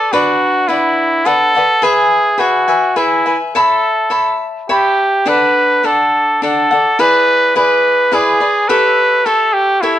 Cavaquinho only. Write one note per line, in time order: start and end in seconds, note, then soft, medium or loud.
0.00 0.12 A4 soft
0.00 0.12 B4 soft
0.00 0.11 D5 soft
0.13 0.67 D4 medium
0.13 0.68 B4 medium
0.13 0.69 D5 medium
0.13 0.68 F#5 medium
0.68 1.24 D4 soft
0.68 1.26 B4 soft
0.68 1.26 D5 medium
0.68 1.25 F#5 soft
1.25 1.54 D4 medium
1.25 1.55 B4 soft
1.25 1.54 D5 medium
1.25 1.55 F#5 medium
1.55 1.82 B4 soft
1.55 1.83 D5 soft
1.55 1.83 F#5 soft
1.82 2.36 G#4 medium
1.82 2.38 B4 medium
1.82 2.39 E5 medium
1.82 2.39 G#5 medium
2.38 2.67 G#4 soft
2.38 2.68 B4 soft
2.38 2.67 E5 medium
2.38 2.66 G#5 medium
2.68 2.95 B4 soft
2.68 2.95 E5 soft
2.68 2.96 G#5 soft
2.96 3.25 G#4 medium
2.96 3.25 B4 medium
2.96 3.25 E5 soft
2.96 3.24 G#5 medium
3.26 3.54 B4 soft
3.26 3.54 E5 soft
3.26 3.54 G#5 soft
3.55 4.09 C#5 medium
3.55 4.09 E5 medium
3.55 4.11 A5 medium
3.55 4.10 B5 medium
4.10 4.68 C#5 soft
4.10 4.68 E5 soft
4.10 4.69 A5 soft
4.10 4.69 B5 soft
4.69 5.25 C#5 medium
4.69 5.26 E5 soft
4.69 5.26 A5 medium
4.69 5.27 B5 soft
5.26 5.83 D4 medium
5.26 5.83 A4 medium
5.26 5.84 D5 medium
5.26 5.84 F#5 medium
5.83 6.42 D4 soft
5.83 6.41 A4 soft
5.83 6.43 D5 medium
5.83 6.42 F#5 soft
6.42 6.71 D4 medium
6.42 6.71 A4 medium
6.42 6.71 D5 soft
6.42 6.70 F#5 medium
6.71 6.99 A4 soft
6.71 6.99 D5 soft
6.71 6.99 F#5 soft
6.99 7.55 E4 medium
6.99 7.55 G#4 medium
6.99 7.55 B4 medium
6.99 7.56 D5 medium
7.55 8.11 E4 soft
7.55 8.11 G#4 medium
7.55 8.12 B4 medium
7.55 8.12 D5 soft
8.12 8.41 E4 medium
8.12 8.41 G#4 medium
8.12 8.40 B4 medium
8.12 8.39 D5 medium
8.40 8.69 G#4 soft
8.40 8.69 B4 soft
8.40 8.69 D5 soft
8.69 9.24 G4 medium
8.69 9.26 A4 medium
8.69 9.25 C#5 medium
8.69 9.26 E5 medium
9.26 9.81 G4 soft
9.26 9.83 A4 medium
9.26 9.82 C#5 medium
9.26 9.82 E5 medium
9.83 9.99 G4 medium
9.83 9.99 A4 medium
9.83 9.99 C#5 medium
9.83 9.99 E5 medium